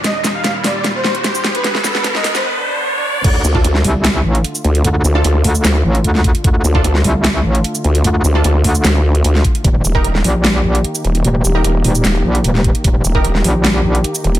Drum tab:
CC |----------------|----------------|x---------------|----------------|
HH |x---x-o-x--xx-xx|x---x-o---------|x---x-o-x--xx-xx|x---x-o-x--xx-xx|
SH |--x----------x--|--x----x--------|--x----------x--|--x----xx-------|
SD |o-o-o-o-o-o-o-o-|oooooooo--------|-----o--o-------|--------o----o--|
BD |----------------|----------------|o--o------------|--------------o-|

CC |----------------|----------------|----------------|----------------|
HH |x---x-o-x--xx-xx|x---x-o-x--xx-xx|x---x-o-x--xx-xx|x---x-o-x--xx-xx|
SH |--x----------x--|--x----xx-------|--x----------x--|--x----xx-------|
SD |-----o--o-------|--------o----o--|-----o--o-------|--------o----o--|
BD |o--o------------|--------------o-|o--o------------|--------------o-|

CC |----------------|
HH |x---x-o-x--xx-xx|
SH |--x----------x--|
SD |-----o--o-------|
BD |o--o------------|